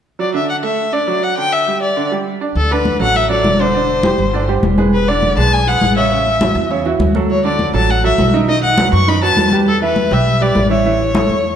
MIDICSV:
0, 0, Header, 1, 5, 480
1, 0, Start_track
1, 0, Key_signature, 2, "major"
1, 0, Tempo, 296150
1, 310, Time_signature, 4, 2, 24, 8
1, 18733, End_track
2, 0, Start_track
2, 0, Title_t, "Violin"
2, 0, Program_c, 0, 40
2, 324, Note_on_c, 0, 74, 70
2, 540, Note_off_c, 0, 74, 0
2, 567, Note_on_c, 0, 76, 71
2, 782, Note_off_c, 0, 76, 0
2, 802, Note_on_c, 0, 78, 87
2, 908, Note_off_c, 0, 78, 0
2, 1036, Note_on_c, 0, 76, 81
2, 1513, Note_on_c, 0, 74, 81
2, 1537, Note_off_c, 0, 76, 0
2, 1997, Note_on_c, 0, 78, 89
2, 2021, Note_off_c, 0, 74, 0
2, 2226, Note_off_c, 0, 78, 0
2, 2235, Note_on_c, 0, 79, 101
2, 2473, Note_on_c, 0, 76, 90
2, 2497, Note_off_c, 0, 79, 0
2, 2941, Note_off_c, 0, 76, 0
2, 2951, Note_on_c, 0, 74, 76
2, 3397, Note_off_c, 0, 74, 0
2, 4164, Note_on_c, 0, 69, 87
2, 4409, Note_on_c, 0, 71, 82
2, 4434, Note_off_c, 0, 69, 0
2, 4880, Note_off_c, 0, 71, 0
2, 4887, Note_on_c, 0, 78, 92
2, 5124, Note_on_c, 0, 76, 91
2, 5148, Note_off_c, 0, 78, 0
2, 5348, Note_off_c, 0, 76, 0
2, 5358, Note_on_c, 0, 74, 90
2, 5841, Note_on_c, 0, 72, 83
2, 5866, Note_off_c, 0, 74, 0
2, 7275, Note_off_c, 0, 72, 0
2, 8004, Note_on_c, 0, 71, 84
2, 8241, Note_on_c, 0, 74, 91
2, 8265, Note_off_c, 0, 71, 0
2, 8707, Note_off_c, 0, 74, 0
2, 8717, Note_on_c, 0, 81, 92
2, 8964, Note_on_c, 0, 80, 93
2, 8988, Note_off_c, 0, 81, 0
2, 9201, Note_on_c, 0, 78, 101
2, 9225, Note_off_c, 0, 80, 0
2, 9668, Note_off_c, 0, 78, 0
2, 9678, Note_on_c, 0, 76, 85
2, 11048, Note_off_c, 0, 76, 0
2, 11842, Note_on_c, 0, 73, 83
2, 12059, Note_off_c, 0, 73, 0
2, 12080, Note_on_c, 0, 74, 82
2, 12521, Note_off_c, 0, 74, 0
2, 12566, Note_on_c, 0, 81, 87
2, 12810, Note_on_c, 0, 78, 86
2, 12834, Note_off_c, 0, 81, 0
2, 13039, Note_off_c, 0, 78, 0
2, 13048, Note_on_c, 0, 76, 85
2, 13485, Note_off_c, 0, 76, 0
2, 13766, Note_on_c, 0, 75, 94
2, 13981, Note_off_c, 0, 75, 0
2, 14002, Note_on_c, 0, 78, 93
2, 14442, Note_off_c, 0, 78, 0
2, 14492, Note_on_c, 0, 85, 90
2, 14727, Note_on_c, 0, 83, 96
2, 14752, Note_off_c, 0, 85, 0
2, 14958, Note_off_c, 0, 83, 0
2, 14973, Note_on_c, 0, 81, 97
2, 15408, Note_off_c, 0, 81, 0
2, 15690, Note_on_c, 0, 69, 89
2, 15903, Note_off_c, 0, 69, 0
2, 15934, Note_on_c, 0, 71, 89
2, 16416, Note_on_c, 0, 76, 85
2, 16440, Note_off_c, 0, 71, 0
2, 16888, Note_on_c, 0, 74, 84
2, 16912, Note_off_c, 0, 76, 0
2, 17358, Note_off_c, 0, 74, 0
2, 17369, Note_on_c, 0, 73, 88
2, 18733, Note_off_c, 0, 73, 0
2, 18733, End_track
3, 0, Start_track
3, 0, Title_t, "Grand piano"
3, 0, Program_c, 1, 0
3, 309, Note_on_c, 1, 54, 56
3, 316, Note_on_c, 1, 66, 58
3, 506, Note_off_c, 1, 54, 0
3, 510, Note_off_c, 1, 66, 0
3, 547, Note_on_c, 1, 50, 74
3, 555, Note_on_c, 1, 62, 77
3, 942, Note_off_c, 1, 50, 0
3, 947, Note_off_c, 1, 62, 0
3, 1021, Note_on_c, 1, 57, 65
3, 1026, Note_on_c, 1, 69, 60
3, 1418, Note_off_c, 1, 57, 0
3, 1421, Note_off_c, 1, 69, 0
3, 1501, Note_on_c, 1, 62, 69
3, 1508, Note_on_c, 1, 74, 65
3, 1702, Note_off_c, 1, 62, 0
3, 1705, Note_off_c, 1, 74, 0
3, 1741, Note_on_c, 1, 54, 58
3, 1747, Note_on_c, 1, 66, 60
3, 2138, Note_off_c, 1, 54, 0
3, 2142, Note_off_c, 1, 66, 0
3, 2227, Note_on_c, 1, 50, 69
3, 2237, Note_on_c, 1, 62, 62
3, 2622, Note_off_c, 1, 50, 0
3, 2627, Note_off_c, 1, 62, 0
3, 2705, Note_on_c, 1, 55, 55
3, 2709, Note_on_c, 1, 67, 57
3, 3100, Note_off_c, 1, 55, 0
3, 3103, Note_off_c, 1, 67, 0
3, 3187, Note_on_c, 1, 50, 74
3, 3194, Note_on_c, 1, 62, 67
3, 3385, Note_off_c, 1, 50, 0
3, 3389, Note_off_c, 1, 62, 0
3, 3427, Note_on_c, 1, 55, 68
3, 3432, Note_on_c, 1, 67, 68
3, 3822, Note_off_c, 1, 55, 0
3, 3825, Note_off_c, 1, 67, 0
3, 3907, Note_on_c, 1, 62, 66
3, 3914, Note_on_c, 1, 74, 63
3, 4105, Note_off_c, 1, 62, 0
3, 4109, Note_off_c, 1, 74, 0
3, 4389, Note_on_c, 1, 50, 78
3, 4394, Note_on_c, 1, 62, 74
3, 4397, Note_on_c, 1, 74, 75
3, 4783, Note_off_c, 1, 50, 0
3, 4786, Note_off_c, 1, 62, 0
3, 4788, Note_off_c, 1, 74, 0
3, 4864, Note_on_c, 1, 54, 70
3, 4874, Note_on_c, 1, 66, 67
3, 4875, Note_on_c, 1, 69, 65
3, 5260, Note_off_c, 1, 54, 0
3, 5266, Note_off_c, 1, 66, 0
3, 5266, Note_off_c, 1, 69, 0
3, 5350, Note_on_c, 1, 54, 73
3, 5354, Note_on_c, 1, 66, 72
3, 5359, Note_on_c, 1, 69, 69
3, 5744, Note_off_c, 1, 54, 0
3, 5746, Note_off_c, 1, 66, 0
3, 5749, Note_off_c, 1, 69, 0
3, 5826, Note_on_c, 1, 50, 78
3, 5835, Note_on_c, 1, 62, 75
3, 5839, Note_on_c, 1, 74, 72
3, 6024, Note_off_c, 1, 50, 0
3, 6030, Note_off_c, 1, 62, 0
3, 6032, Note_off_c, 1, 74, 0
3, 6070, Note_on_c, 1, 50, 69
3, 6072, Note_on_c, 1, 62, 66
3, 6078, Note_on_c, 1, 74, 68
3, 6464, Note_off_c, 1, 50, 0
3, 6465, Note_off_c, 1, 62, 0
3, 6468, Note_off_c, 1, 74, 0
3, 6546, Note_on_c, 1, 55, 61
3, 6553, Note_on_c, 1, 67, 62
3, 6555, Note_on_c, 1, 72, 57
3, 6941, Note_off_c, 1, 55, 0
3, 6945, Note_off_c, 1, 67, 0
3, 6946, Note_off_c, 1, 72, 0
3, 7027, Note_on_c, 1, 50, 73
3, 7032, Note_on_c, 1, 62, 70
3, 7035, Note_on_c, 1, 74, 75
3, 7225, Note_off_c, 1, 50, 0
3, 7228, Note_off_c, 1, 62, 0
3, 7230, Note_off_c, 1, 74, 0
3, 7268, Note_on_c, 1, 55, 70
3, 7274, Note_on_c, 1, 67, 73
3, 7276, Note_on_c, 1, 72, 70
3, 7662, Note_off_c, 1, 55, 0
3, 7666, Note_off_c, 1, 67, 0
3, 7667, Note_off_c, 1, 72, 0
3, 7740, Note_on_c, 1, 56, 70
3, 7747, Note_on_c, 1, 68, 73
3, 7752, Note_on_c, 1, 71, 71
3, 8137, Note_off_c, 1, 56, 0
3, 8142, Note_off_c, 1, 68, 0
3, 8145, Note_off_c, 1, 71, 0
3, 8228, Note_on_c, 1, 50, 82
3, 8234, Note_on_c, 1, 62, 78
3, 8241, Note_on_c, 1, 74, 79
3, 8622, Note_off_c, 1, 50, 0
3, 8626, Note_off_c, 1, 62, 0
3, 8630, Note_off_c, 1, 74, 0
3, 8715, Note_on_c, 1, 56, 69
3, 8719, Note_on_c, 1, 68, 70
3, 8724, Note_on_c, 1, 71, 65
3, 9106, Note_off_c, 1, 56, 0
3, 9109, Note_off_c, 1, 68, 0
3, 9112, Note_off_c, 1, 71, 0
3, 9191, Note_on_c, 1, 56, 70
3, 9194, Note_on_c, 1, 68, 72
3, 9198, Note_on_c, 1, 71, 72
3, 9584, Note_off_c, 1, 56, 0
3, 9586, Note_off_c, 1, 68, 0
3, 9588, Note_off_c, 1, 71, 0
3, 9671, Note_on_c, 1, 49, 77
3, 9676, Note_on_c, 1, 61, 77
3, 9681, Note_on_c, 1, 73, 78
3, 9867, Note_off_c, 1, 49, 0
3, 9870, Note_off_c, 1, 61, 0
3, 9873, Note_off_c, 1, 73, 0
3, 9912, Note_on_c, 1, 49, 63
3, 9918, Note_on_c, 1, 61, 67
3, 9922, Note_on_c, 1, 73, 66
3, 10304, Note_off_c, 1, 49, 0
3, 10308, Note_off_c, 1, 61, 0
3, 10310, Note_off_c, 1, 73, 0
3, 10391, Note_on_c, 1, 52, 57
3, 10395, Note_on_c, 1, 64, 58
3, 10400, Note_on_c, 1, 66, 59
3, 10784, Note_off_c, 1, 52, 0
3, 10786, Note_off_c, 1, 64, 0
3, 10789, Note_off_c, 1, 66, 0
3, 10865, Note_on_c, 1, 49, 70
3, 10874, Note_on_c, 1, 61, 76
3, 10876, Note_on_c, 1, 73, 74
3, 11063, Note_off_c, 1, 49, 0
3, 11069, Note_off_c, 1, 61, 0
3, 11070, Note_off_c, 1, 73, 0
3, 11107, Note_on_c, 1, 52, 66
3, 11111, Note_on_c, 1, 64, 72
3, 11117, Note_on_c, 1, 66, 71
3, 11501, Note_off_c, 1, 52, 0
3, 11504, Note_off_c, 1, 64, 0
3, 11507, Note_off_c, 1, 66, 0
3, 11592, Note_on_c, 1, 54, 64
3, 11598, Note_on_c, 1, 66, 63
3, 11599, Note_on_c, 1, 69, 68
3, 11984, Note_off_c, 1, 54, 0
3, 11987, Note_off_c, 1, 66, 0
3, 11988, Note_off_c, 1, 69, 0
3, 12069, Note_on_c, 1, 50, 80
3, 12072, Note_on_c, 1, 62, 79
3, 12080, Note_on_c, 1, 74, 74
3, 12462, Note_off_c, 1, 50, 0
3, 12464, Note_off_c, 1, 62, 0
3, 12469, Note_off_c, 1, 74, 0
3, 12543, Note_on_c, 1, 54, 68
3, 12546, Note_on_c, 1, 66, 64
3, 12552, Note_on_c, 1, 69, 64
3, 12939, Note_off_c, 1, 54, 0
3, 12940, Note_off_c, 1, 66, 0
3, 12944, Note_off_c, 1, 69, 0
3, 13027, Note_on_c, 1, 54, 65
3, 13034, Note_on_c, 1, 66, 73
3, 13035, Note_on_c, 1, 69, 67
3, 13421, Note_off_c, 1, 54, 0
3, 13425, Note_off_c, 1, 66, 0
3, 13426, Note_off_c, 1, 69, 0
3, 13511, Note_on_c, 1, 51, 79
3, 13514, Note_on_c, 1, 63, 76
3, 13519, Note_on_c, 1, 75, 76
3, 13706, Note_off_c, 1, 51, 0
3, 13709, Note_off_c, 1, 63, 0
3, 13711, Note_off_c, 1, 75, 0
3, 13747, Note_on_c, 1, 51, 71
3, 13750, Note_on_c, 1, 63, 73
3, 13756, Note_on_c, 1, 75, 62
3, 14141, Note_off_c, 1, 51, 0
3, 14143, Note_off_c, 1, 63, 0
3, 14146, Note_off_c, 1, 75, 0
3, 14224, Note_on_c, 1, 54, 63
3, 14233, Note_on_c, 1, 66, 57
3, 14234, Note_on_c, 1, 71, 60
3, 14619, Note_off_c, 1, 54, 0
3, 14625, Note_off_c, 1, 66, 0
3, 14625, Note_off_c, 1, 71, 0
3, 14713, Note_on_c, 1, 51, 74
3, 14716, Note_on_c, 1, 63, 73
3, 14725, Note_on_c, 1, 75, 75
3, 14908, Note_off_c, 1, 51, 0
3, 14910, Note_off_c, 1, 63, 0
3, 14915, Note_off_c, 1, 75, 0
3, 14952, Note_on_c, 1, 54, 69
3, 14958, Note_on_c, 1, 66, 68
3, 14960, Note_on_c, 1, 71, 75
3, 15344, Note_off_c, 1, 54, 0
3, 15348, Note_off_c, 1, 66, 0
3, 15349, Note_off_c, 1, 71, 0
3, 15438, Note_on_c, 1, 55, 72
3, 15440, Note_on_c, 1, 67, 70
3, 15447, Note_on_c, 1, 71, 70
3, 15828, Note_off_c, 1, 55, 0
3, 15829, Note_off_c, 1, 67, 0
3, 15833, Note_off_c, 1, 71, 0
3, 15913, Note_on_c, 1, 52, 83
3, 15918, Note_on_c, 1, 64, 83
3, 15925, Note_on_c, 1, 76, 76
3, 16305, Note_off_c, 1, 52, 0
3, 16308, Note_off_c, 1, 64, 0
3, 16312, Note_off_c, 1, 76, 0
3, 16390, Note_on_c, 1, 55, 64
3, 16395, Note_on_c, 1, 67, 75
3, 16401, Note_on_c, 1, 71, 68
3, 16783, Note_off_c, 1, 55, 0
3, 16786, Note_off_c, 1, 67, 0
3, 16790, Note_off_c, 1, 71, 0
3, 16871, Note_on_c, 1, 55, 71
3, 16879, Note_on_c, 1, 67, 74
3, 16882, Note_on_c, 1, 71, 71
3, 17264, Note_off_c, 1, 55, 0
3, 17268, Note_off_c, 1, 67, 0
3, 17270, Note_off_c, 1, 71, 0
3, 17346, Note_on_c, 1, 52, 77
3, 17351, Note_on_c, 1, 64, 80
3, 17359, Note_on_c, 1, 76, 82
3, 17544, Note_off_c, 1, 52, 0
3, 17547, Note_off_c, 1, 64, 0
3, 17551, Note_off_c, 1, 76, 0
3, 17592, Note_on_c, 1, 52, 74
3, 17596, Note_on_c, 1, 64, 71
3, 17601, Note_on_c, 1, 76, 70
3, 17984, Note_off_c, 1, 52, 0
3, 17987, Note_off_c, 1, 64, 0
3, 17990, Note_off_c, 1, 76, 0
3, 18070, Note_on_c, 1, 57, 57
3, 18077, Note_on_c, 1, 69, 64
3, 18078, Note_on_c, 1, 73, 62
3, 18463, Note_off_c, 1, 57, 0
3, 18467, Note_off_c, 1, 69, 0
3, 18468, Note_off_c, 1, 73, 0
3, 18733, End_track
4, 0, Start_track
4, 0, Title_t, "Upright bass"
4, 0, Program_c, 2, 32
4, 4140, Note_on_c, 2, 38, 88
4, 4814, Note_off_c, 2, 38, 0
4, 4862, Note_on_c, 2, 33, 84
4, 5535, Note_off_c, 2, 33, 0
4, 5584, Note_on_c, 2, 28, 80
4, 6698, Note_off_c, 2, 28, 0
4, 6781, Note_on_c, 2, 31, 90
4, 7455, Note_off_c, 2, 31, 0
4, 7504, Note_on_c, 2, 28, 81
4, 8618, Note_off_c, 2, 28, 0
4, 8702, Note_on_c, 2, 35, 92
4, 9375, Note_off_c, 2, 35, 0
4, 9425, Note_on_c, 2, 33, 85
4, 10538, Note_off_c, 2, 33, 0
4, 10619, Note_on_c, 2, 40, 96
4, 11293, Note_off_c, 2, 40, 0
4, 11338, Note_on_c, 2, 38, 84
4, 12454, Note_off_c, 2, 38, 0
4, 12544, Note_on_c, 2, 33, 88
4, 13216, Note_off_c, 2, 33, 0
4, 13265, Note_on_c, 2, 35, 84
4, 14378, Note_off_c, 2, 35, 0
4, 14468, Note_on_c, 2, 42, 96
4, 15138, Note_off_c, 2, 42, 0
4, 15186, Note_on_c, 2, 40, 81
4, 16299, Note_off_c, 2, 40, 0
4, 16386, Note_on_c, 2, 35, 100
4, 17057, Note_off_c, 2, 35, 0
4, 17107, Note_on_c, 2, 33, 84
4, 18219, Note_off_c, 2, 33, 0
4, 18305, Note_on_c, 2, 40, 85
4, 18733, Note_off_c, 2, 40, 0
4, 18733, End_track
5, 0, Start_track
5, 0, Title_t, "Drums"
5, 4153, Note_on_c, 9, 63, 28
5, 4315, Note_off_c, 9, 63, 0
5, 4386, Note_on_c, 9, 63, 32
5, 4548, Note_off_c, 9, 63, 0
5, 4623, Note_on_c, 9, 63, 62
5, 4785, Note_off_c, 9, 63, 0
5, 4863, Note_on_c, 9, 63, 30
5, 5025, Note_off_c, 9, 63, 0
5, 5104, Note_on_c, 9, 63, 33
5, 5266, Note_off_c, 9, 63, 0
5, 5344, Note_on_c, 9, 63, 34
5, 5507, Note_off_c, 9, 63, 0
5, 5581, Note_on_c, 9, 63, 79
5, 5743, Note_off_c, 9, 63, 0
5, 5819, Note_on_c, 9, 63, 27
5, 5981, Note_off_c, 9, 63, 0
5, 6058, Note_on_c, 9, 63, 31
5, 6220, Note_off_c, 9, 63, 0
5, 6296, Note_on_c, 9, 63, 34
5, 6458, Note_off_c, 9, 63, 0
5, 6537, Note_on_c, 9, 63, 87
5, 6699, Note_off_c, 9, 63, 0
5, 6787, Note_on_c, 9, 63, 31
5, 6949, Note_off_c, 9, 63, 0
5, 7022, Note_on_c, 9, 63, 31
5, 7184, Note_off_c, 9, 63, 0
5, 7263, Note_on_c, 9, 63, 32
5, 7425, Note_off_c, 9, 63, 0
5, 7503, Note_on_c, 9, 63, 84
5, 7665, Note_off_c, 9, 63, 0
5, 7745, Note_on_c, 9, 63, 75
5, 7908, Note_off_c, 9, 63, 0
5, 7988, Note_on_c, 9, 63, 29
5, 8150, Note_off_c, 9, 63, 0
5, 8231, Note_on_c, 9, 63, 34
5, 8393, Note_off_c, 9, 63, 0
5, 8470, Note_on_c, 9, 63, 60
5, 8632, Note_off_c, 9, 63, 0
5, 8710, Note_on_c, 9, 63, 31
5, 8872, Note_off_c, 9, 63, 0
5, 8950, Note_on_c, 9, 63, 32
5, 9112, Note_off_c, 9, 63, 0
5, 9187, Note_on_c, 9, 63, 32
5, 9349, Note_off_c, 9, 63, 0
5, 9425, Note_on_c, 9, 63, 80
5, 9587, Note_off_c, 9, 63, 0
5, 9665, Note_on_c, 9, 63, 30
5, 9827, Note_off_c, 9, 63, 0
5, 9908, Note_on_c, 9, 63, 31
5, 10071, Note_off_c, 9, 63, 0
5, 10147, Note_on_c, 9, 63, 30
5, 10309, Note_off_c, 9, 63, 0
5, 10388, Note_on_c, 9, 63, 85
5, 10550, Note_off_c, 9, 63, 0
5, 10626, Note_on_c, 9, 63, 30
5, 10788, Note_off_c, 9, 63, 0
5, 10868, Note_on_c, 9, 63, 33
5, 11031, Note_off_c, 9, 63, 0
5, 11109, Note_on_c, 9, 63, 31
5, 11271, Note_off_c, 9, 63, 0
5, 11344, Note_on_c, 9, 63, 79
5, 11506, Note_off_c, 9, 63, 0
5, 11583, Note_on_c, 9, 63, 69
5, 11745, Note_off_c, 9, 63, 0
5, 11826, Note_on_c, 9, 63, 30
5, 11988, Note_off_c, 9, 63, 0
5, 12063, Note_on_c, 9, 63, 34
5, 12225, Note_off_c, 9, 63, 0
5, 12304, Note_on_c, 9, 63, 57
5, 12466, Note_off_c, 9, 63, 0
5, 12545, Note_on_c, 9, 63, 31
5, 12707, Note_off_c, 9, 63, 0
5, 12781, Note_on_c, 9, 63, 33
5, 12944, Note_off_c, 9, 63, 0
5, 13019, Note_on_c, 9, 63, 31
5, 13181, Note_off_c, 9, 63, 0
5, 13263, Note_on_c, 9, 63, 85
5, 13425, Note_off_c, 9, 63, 0
5, 13510, Note_on_c, 9, 63, 30
5, 13672, Note_off_c, 9, 63, 0
5, 13745, Note_on_c, 9, 63, 31
5, 13907, Note_off_c, 9, 63, 0
5, 13985, Note_on_c, 9, 63, 34
5, 14147, Note_off_c, 9, 63, 0
5, 14225, Note_on_c, 9, 63, 91
5, 14387, Note_off_c, 9, 63, 0
5, 14468, Note_on_c, 9, 63, 30
5, 14630, Note_off_c, 9, 63, 0
5, 14705, Note_on_c, 9, 63, 34
5, 14867, Note_off_c, 9, 63, 0
5, 14947, Note_on_c, 9, 63, 30
5, 15109, Note_off_c, 9, 63, 0
5, 15183, Note_on_c, 9, 63, 86
5, 15345, Note_off_c, 9, 63, 0
5, 15426, Note_on_c, 9, 63, 70
5, 15588, Note_off_c, 9, 63, 0
5, 15664, Note_on_c, 9, 63, 31
5, 15826, Note_off_c, 9, 63, 0
5, 15905, Note_on_c, 9, 63, 35
5, 16067, Note_off_c, 9, 63, 0
5, 16145, Note_on_c, 9, 63, 58
5, 16307, Note_off_c, 9, 63, 0
5, 16387, Note_on_c, 9, 63, 31
5, 16549, Note_off_c, 9, 63, 0
5, 16624, Note_on_c, 9, 63, 32
5, 16786, Note_off_c, 9, 63, 0
5, 16867, Note_on_c, 9, 63, 34
5, 17029, Note_off_c, 9, 63, 0
5, 17103, Note_on_c, 9, 63, 85
5, 17265, Note_off_c, 9, 63, 0
5, 17349, Note_on_c, 9, 63, 32
5, 17511, Note_off_c, 9, 63, 0
5, 17590, Note_on_c, 9, 63, 28
5, 17752, Note_off_c, 9, 63, 0
5, 17827, Note_on_c, 9, 63, 35
5, 17989, Note_off_c, 9, 63, 0
5, 18067, Note_on_c, 9, 63, 99
5, 18229, Note_off_c, 9, 63, 0
5, 18306, Note_on_c, 9, 63, 32
5, 18468, Note_off_c, 9, 63, 0
5, 18733, End_track
0, 0, End_of_file